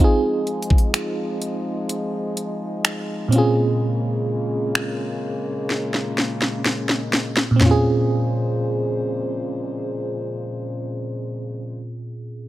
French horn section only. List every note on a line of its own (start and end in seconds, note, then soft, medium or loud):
0.00 3.29 F3 medium
0.00 3.29 G#3 medium
0.00 3.28 D#4 medium
3.32 7.44 C#3 medium
3.32 7.44 G#3 medium
3.32 7.44 A#3 medium
7.61 11.87 A#2 medium
7.61 11.87 C#3 medium
7.61 11.87 F3 medium
7.61 11.87 G#3 medium
7.61 11.87 C5 medium